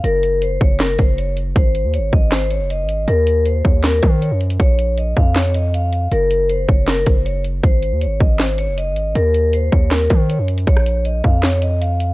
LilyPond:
<<
  \new Staff \with { instrumentName = "Vibraphone" } { \time 4/4 \key bes \minor \tempo 4 = 158 bes'4 c''8 des''8 bes'8 c''8 des''8 r8 | c''4 des''8 ees''8 c''8 des''8 ees''4 | bes'4 c''8 des''8 bes'8 c''8 des''8 r8 | des''4 ees''8 f''8 des''8 ees''8 f''4 |
bes'4 c''8 des''8 bes'8 r8 des''8 r8 | c''4 des''8 ees''8 c''8 des''8 ees''4 | bes'4 c''8 des''8 bes'8 c''8 des''8 r8 | des''4 ees''8 f''8 des''8 ees''8 f''4 | }
  \new Staff \with { instrumentName = "808-style bass" } { \clef bass \time 4/4 \key bes \minor ges,,4. ges,,4 ges,,4. | aes,,8. ees,16. aes,,16. aes,,4~ aes,,16 ges,,8~ ges,,32 aes,,8~ aes,,32 | ees,4. ees,4 ees8. ges,8. | bes,,4. f,2~ f,8 |
ges,,4. ges,,4 ges,,4. | aes,,8. ees,16. aes,,16. aes,,4~ aes,,16 ges,,8~ ges,,32 aes,,8~ aes,,32 | ees,4. ees,4 ees8. ges,8. | bes,,4. f,2~ f,8 | }
  \new DrumStaff \with { instrumentName = "Drums" } \drummode { \time 4/4 hh8 hh8 hh8 bd8 <hc hh sn>8 <hh bd>8 hh8 hh8 | <hh bd>8 hh8 hh8 bd8 <hc hh sn>8 hh8 hh8 hh8 | hh8 hh8 hh8 bd8 <hc hh sn>8 <hh bd>8 hh8 <hh hho>16 hh16 | <hh bd>8 hh8 hh8 bd8 <hc hh sn>8 hh8 hh8 hh8 |
hh8 hh8 hh8 bd8 <hc hh sn>8 <hh bd>8 hh8 hh8 | <hh bd>8 hh8 hh8 bd8 <hc hh sn>8 hh8 hh8 hh8 | hh8 hh8 hh8 bd8 <hc hh sn>8 <hh bd>8 hh8 <hh hho>16 hh16 | <hh bd>16 ss16 hh8 hh8 bd8 <hc hh sn>8 hh8 hh8 hh8 | }
>>